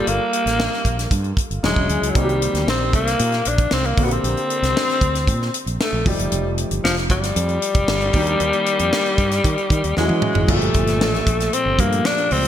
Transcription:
Already playing: G3 A#3 F4 A4
0.07 G1 A#3, closed hi-hat
0.33 closed hi-hat
0.46 A1, snare, closed hi-hat
0.60 snare
0.73 snare
0.85 A#1, kick, closed hi-hat
0.99 snare, closed hi-hat
1.11 G2, kick, closed hi-hat
1.24 closed hi-hat
1.37 kick, closed hi-hat
1.50 G1, closed hi-hat
1.63 E1 F#3 G#3 C#4 E4 G#4, snare
1.76 E1, kick
1.89 D2, closed hi-hat
2.02 C#2, closed hi-hat
2.09 F#3
2.15 C2 D#3 G3 A#3 C4 F#4, kick, closed hi-hat
2.24 G4
2.29 closed hi-hat
2.42 closed hi-hat
2.54 D2, snare, closed hi-hat
2.67 A#1 C4, snare
2.93 C2 A#3, kick, closed hi-hat
3.07 snare, closed hi-hat
3.19 A#2, closed hi-hat
3.32 snare, closed hi-hat
3.45 A#1 D4, closed hi-hat
3.58 kick, closed hi-hat
3.71 C2 C4, snare
3.84 A#3, closed hi-hat
3.96 A#1 D3 A#3 C4 F#4, kick, open hi-hat
4.04 B3 G4
4.11 C4, closed hi-hat
4.24 A#1, closed hi-hat
4.37 closed hi-hat
4.50 closed hi-hat
4.63 C2, snare, closed hi-hat
4.77 snare
4.89 snare, closed hi-hat
5.01 D2, kick, closed hi-hat
5.15 snare, closed hi-hat
5.27 A#2, kick, closed hi-hat
5.42 snare
5.54 closed hi-hat
5.66 A#1, closed hi-hat
5.81 A3, snare
5.93 A#1
6.04 F1 F3 G3 A3 D#4 G4, kick, open hi-hat
6.19 F#1, closed hi-hat
6.32 F1, closed hi-hat
6.58 closed hi-hat
6.71 G1, closed hi-hat
6.84 F1 F3, snare
6.97 snare, closed hi-hat
7.10 G1 G3, kick, closed hi-hat
7.23 snare, closed hi-hat
7.36 F2, closed hi-hat
7.49 closed hi-hat
7.62 closed hi-hat
7.74 F1, kick, closed hi-hat
7.88 G1, snare
8.01 closed hi-hat
8.13 D#2 D#3 A#3 D4 G4, kick, open hi-hat
8.27 closed hi-hat
8.40 D#2, closed hi-hat
8.53 closed hi-hat
8.66 closed hi-hat
8.79 F2, closed hi-hat
8.93 snare
9.06 closed hi-hat
9.18 G2, kick, closed hi-hat
9.31 snare, closed hi-hat
9.44 D#3, kick, closed hi-hat
9.58 closed hi-hat
9.70 D#3, kick, closed hi-hat
9.84 D#2, closed hi-hat
9.97 E2 E3 F#3 G#3 C#4 F#4, snare
10.04 G#3
10.09 E3, high tom
10.22 mid tom
10.35 G#1, floor tom
10.47 G1 A#2 F3 A3 F4, kick, crash
10.56 G4
10.61 closed hi-hat
10.74 G1, kick, closed hi-hat
10.87 snare, closed hi-hat
11.01 A1, snare
11.14 snare, closed hi-hat
11.27 A#1, kick, closed hi-hat
11.40 snare, closed hi-hat
11.53 C4, closed hi-hat
11.66 G1
11.78 G2 F3 A3 A#3 G4, kick, closed hi-hat
11.92 closed hi-hat
12.05 D4, snare
12.18 closed hi-hat
12.31 C#2 C4, open hi-hat

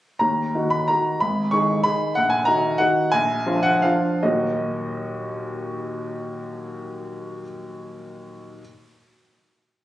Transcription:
0.19 D#2 A#5
0.55 D#3 D#4 F#4
0.70 B5
0.88 D#3 D#4 F#4 A#5
1.20 G#1 B5
1.51 D#3 D#4 G#4 C#6
1.84 D#3 D#4 G#4 B5
2.15 A#1 F#5
2.30 G#5
2.45 D#3 D#4 F#4 A#5
2.78 D#3 D#4 F#4 F#5
3.12 A#1 G#5
3.46 F3 D4 F4
3.63 F#5
3.82 F3 D4 F4 F5
4.23 D#2 A#2 F#3 A#3 D#4 F#4 D#5

